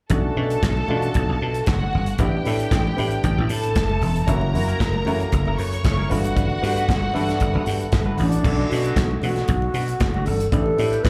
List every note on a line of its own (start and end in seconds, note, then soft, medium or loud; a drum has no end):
0.10 0.29 B1 medium
0.10 0.31 A3 medium
0.10 0.31 C#4 medium
0.10 0.31 D4 medium
0.10 0.31 F#4 medium
0.10 1.64 A4 medium
0.10 1.65 A5 medium
0.10 kick loud
0.10 closed hi-hat medium
0.10 low conga medium
0.36 0.56 B2 medium
0.36 0.77 A3 medium
0.36 0.78 C#4 medium
0.36 0.78 D4 medium
0.36 0.78 F#4 medium
0.50 closed hi-hat soft
0.63 0.82 B1 medium
0.63 kick loud
0.63 snare medium
0.63 closed hi-hat medium
0.63 muted conga soft
0.77 high conga medium
0.88 1.09 B2 medium
0.88 1.70 A3 medium
0.88 1.70 C#4 medium
0.88 1.70 D4 medium
0.88 0.96 F4 medium
0.88 high conga medium
0.88 low conga medium
0.95 1.73 F#4 loud
1.02 closed hi-hat soft
1.14 1.25 B1 loud
1.14 kick medium
1.14 closed hi-hat medium
1.14 muted conga soft
1.29 1.38 B1 medium
1.42 1.60 B2 medium
1.54 closed hi-hat soft
1.66 1.86 F#1 medium
1.66 2.18 F#4 medium
1.66 2.18 F#5 medium
1.66 kick loud
1.66 snare loud
1.66 closed hi-hat medium
1.66 high conga soft
1.81 muted conga soft
1.81 high conga medium
1.93 2.13 G1 medium
1.93 low conga medium
2.06 closed hi-hat soft
2.18 2.38 A1 medium
2.18 2.40 B3 medium
2.18 2.40 D4 medium
2.18 2.40 E4 medium
2.18 3.47 G4 medium
2.18 2.41 G4 medium
2.18 3.47 G5 medium
2.18 kick medium
2.18 closed hi-hat medium
2.18 muted conga soft
2.18 low conga medium
2.45 2.65 A2 medium
2.45 2.86 B3 medium
2.45 2.87 D4 medium
2.45 2.87 E4 medium
2.45 2.87 A4 medium
2.45 open hi-hat medium
2.59 closed hi-hat soft
2.71 2.90 A1 medium
2.71 kick loud
2.71 snare medium
2.71 closed hi-hat medium
2.71 muted conga soft
2.87 muted conga soft
2.87 high conga medium
2.96 3.17 A2 medium
2.96 3.78 B3 medium
2.96 3.78 D4 medium
2.96 3.79 E4 medium
2.96 3.79 G4 medium
2.96 open hi-hat soft
2.96 low conga medium
3.11 closed hi-hat soft
3.24 3.34 A1 medium
3.24 kick medium
3.24 closed hi-hat medium
3.38 3.47 A1 medium
3.49 3.77 A2 medium
3.49 4.26 A4 medium
3.49 4.26 A5 medium
3.49 open hi-hat medium
3.64 closed hi-hat soft
3.75 3.95 F#1 medium
3.75 kick loud
3.75 snare loud
3.75 closed hi-hat medium
3.75 muted conga soft
3.75 high conga soft
3.89 muted conga soft
3.89 high conga medium
4.01 4.20 E1 medium
4.01 open hi-hat medium
4.01 low conga medium
4.16 closed hi-hat medium
4.27 4.55 F#1 medium
4.27 4.48 A#3 medium
4.27 4.44 C#4 medium
4.27 4.48 C#4 medium
4.27 4.41 E4 medium
4.27 4.49 E4 medium
4.27 4.49 F#4 medium
4.27 4.40 A#4 medium
4.27 5.56 A#4 medium
4.27 5.56 A#5 medium
4.27 kick medium
4.27 closed hi-hat medium
4.27 muted conga soft
4.27 low conga medium
4.41 muted clean electric guitar stroke soft
4.41 muted conga soft
4.52 4.73 F#2 medium
4.52 4.95 A#3 medium
4.52 4.95 C#4 medium
4.52 4.95 E4 medium
4.52 4.96 F#4 medium
4.52 muted clean electric guitar stroke soft
4.52 open hi-hat medium
4.67 4.80 C#4 soft
4.67 4.79 E4 soft
4.67 4.79 A#4 soft
4.67 closed hi-hat soft
4.79 4.99 F#1 medium
4.79 kick medium
4.79 snare loud
4.79 closed hi-hat medium
4.79 muted conga soft
4.93 muted clean electric guitar stroke soft
4.93 muted conga soft
4.93 high conga medium
5.05 5.25 F#2 medium
5.05 5.12 A3 medium
5.05 5.22 C#4 medium
5.05 5.87 C#4 medium
5.05 5.19 E4 medium
5.05 5.87 E4 medium
5.05 5.88 F#4 medium
5.05 5.19 A#4 medium
5.05 open hi-hat soft
5.05 high conga medium
5.05 low conga medium
5.12 5.90 A#3 medium
5.20 muted clean electric guitar stroke medium
5.20 closed hi-hat soft
5.32 5.43 F#1 loud
5.32 muted clean electric guitar stroke soft
5.32 kick medium
5.32 closed hi-hat medium
5.32 muted conga soft
5.46 5.55 F#1 medium
5.46 5.57 C#4 medium
5.46 5.57 E4 medium
5.46 5.58 A#4 medium
5.46 muted conga soft
5.58 5.77 F#2 medium
5.58 6.09 C#5 medium
5.58 6.09 C#6 medium
5.58 muted clean electric guitar stroke soft
5.58 open hi-hat medium
5.72 muted clean electric guitar stroke soft
5.72 closed hi-hat soft
5.84 6.04 F#1 medium
5.84 muted clean electric guitar stroke soft
5.84 kick loud
5.84 snare loud
5.84 closed hi-hat medium
5.84 muted conga soft
5.84 high conga soft
5.97 6.09 C#4 medium
5.97 6.09 E4 medium
5.97 6.10 A#4 medium
5.97 high conga medium
6.09 6.48 G1 medium
6.09 6.52 A3 medium
6.09 6.52 B3 medium
6.09 6.23 D4 medium
6.09 6.53 D4 medium
6.09 6.17 F4 medium
6.09 6.23 F#4 medium
6.09 8.41 F#4 medium
6.09 6.22 B4 medium
6.09 8.40 F#5 loud
6.09 open hi-hat medium
6.09 low conga medium
6.17 6.56 F#4 loud
6.23 muted clean electric guitar stroke medium
6.23 closed hi-hat soft
6.35 6.52 D4 medium
6.35 6.49 F#4 medium
6.35 6.48 B4 medium
6.35 kick loud
6.35 closed hi-hat medium
6.35 muted conga soft
6.35 low conga medium
6.49 muted clean electric guitar stroke medium
6.49 muted conga soft
6.61 6.82 G2 medium
6.61 7.03 A3 medium
6.61 7.03 B3 medium
6.61 7.04 D4 medium
6.61 7.04 F#4 medium
6.61 muted clean electric guitar stroke soft
6.61 open hi-hat medium
6.76 6.88 D4 soft
6.76 6.88 F#4 soft
6.76 6.88 B4 medium
6.76 closed hi-hat soft
6.88 7.08 G1 medium
6.88 kick loud
6.88 snare medium
6.88 closed hi-hat medium
6.88 muted conga soft
7.02 muted clean electric guitar stroke soft
7.02 high conga medium
7.13 7.33 G2 medium
7.13 7.95 A3 medium
7.13 7.95 B3 medium
7.13 7.31 D4 medium
7.13 7.95 D4 medium
7.13 7.28 F#4 medium
7.13 7.96 A4 medium
7.13 7.27 B4 medium
7.13 open hi-hat soft
7.13 low conga medium
7.29 muted clean electric guitar stroke soft
7.29 snare soft
7.29 closed hi-hat soft
7.40 7.51 G1 loud
7.40 muted clean electric guitar stroke soft
7.40 kick medium
7.40 closed hi-hat medium
7.53 7.63 G1 medium
7.53 7.64 D4 medium
7.53 7.65 F#4 medium
7.53 7.65 B4 medium
7.53 muted conga soft
7.65 7.85 G2 loud
7.65 muted clean electric guitar stroke soft
7.65 open hi-hat medium
7.80 muted clean electric guitar stroke soft
7.80 closed hi-hat soft
7.92 8.11 G1 medium
7.92 muted clean electric guitar stroke soft
7.92 kick loud
7.92 snare loud
7.92 closed hi-hat medium
7.92 high conga soft
8.06 8.16 D4 medium
8.06 8.17 F#4 medium
8.06 8.17 B4 medium
8.06 muted conga soft
8.06 high conga medium
8.17 8.38 A1 medium
8.17 8.31 D4 medium
8.17 8.71 D4 medium
8.17 8.31 F#4 medium
8.17 8.31 B4 medium
8.17 open hi-hat medium
8.17 low conga medium
8.32 muted clean electric guitar stroke medium
8.32 closed hi-hat soft
8.43 8.63 B1 medium
8.43 8.64 A3 medium
8.43 8.60 A3 medium
8.43 8.65 C#4 medium
8.43 8.65 D4 medium
8.43 8.58 D4 medium
8.43 8.65 F#4 medium
8.43 8.57 F#4 loud
8.43 kick loud
8.43 crash medium
8.43 muted conga soft
8.43 low conga medium
8.58 muted clean electric guitar stroke soft
8.58 muted conga soft
8.69 8.90 B2 medium
8.69 9.51 A3 medium
8.69 9.51 C#4 medium
8.69 9.51 D4 medium
8.69 9.21 F#4 medium
8.69 9.52 F#4 medium
8.69 muted clean electric guitar stroke soft
8.69 open hi-hat medium
8.84 8.96 A3 soft
8.84 8.96 D4 medium
8.84 8.96 F#4 medium
8.84 closed hi-hat soft
8.96 9.16 B1 loud
8.96 kick loud
8.96 snare loud
8.96 closed hi-hat medium
9.11 muted clean electric guitar stroke soft
9.11 high conga medium
9.22 9.42 B2 loud
9.22 9.39 A3 medium
9.22 9.36 D4 medium
9.22 10.27 F#4 loud
9.22 9.34 F#4 medium
9.22 open hi-hat soft
9.22 high conga medium
9.22 low conga medium
9.36 muted clean electric guitar stroke soft
9.36 snare soft
9.36 closed hi-hat soft
9.48 9.68 B1 medium
9.48 muted clean electric guitar stroke soft
9.48 kick loud
9.48 closed hi-hat medium
9.62 muted clean electric guitar stroke soft
9.62 muted conga soft
9.74 9.93 B2 loud
9.74 9.91 A3 medium
9.74 9.89 D4 medium
9.74 9.88 F#4 medium
9.74 open hi-hat medium
9.88 muted clean electric guitar stroke soft
9.88 closed hi-hat soft
10.00 10.20 F#1 medium
10.00 kick loud
10.00 snare loud
10.00 closed hi-hat medium
10.00 muted conga soft
10.00 high conga soft
10.14 10.26 A3 medium
10.14 10.27 D4 medium
10.14 10.27 F#4 medium
10.14 muted conga soft
10.14 high conga medium
10.26 10.46 G1 medium
10.26 10.40 A3 medium
10.26 10.40 D4 medium
10.26 10.40 F#4 medium
10.26 10.50 A4 loud
10.26 open hi-hat medium
10.26 low conga medium
10.40 muted clean electric guitar stroke soft
10.40 closed hi-hat medium
10.51 10.71 A1 medium
10.51 10.69 A3 medium
10.51 10.73 B3 medium
10.51 10.73 D4 medium
10.51 10.65 D4 medium
10.51 10.73 E4 medium
10.51 10.73 G4 medium
10.51 10.64 G4 medium
10.51 11.04 A4 loud
10.51 kick loud
10.51 closed hi-hat medium
10.51 muted conga soft
10.51 low conga medium
10.66 muted clean electric guitar stroke soft
10.66 muted conga soft
10.77 10.97 A2 medium
10.77 11.10 B3 medium
10.77 11.10 D4 medium
10.77 11.10 E4 medium
10.77 11.10 G4 medium
10.77 open hi-hat medium
10.91 11.04 A3 soft
10.91 11.03 D4 soft
10.91 11.03 G4 medium
10.91 closed hi-hat soft
11.03 11.10 A1 medium
11.03 11.10 B4 loud
11.03 kick loud
11.03 snare loud
11.03 closed hi-hat medium
11.03 muted conga soft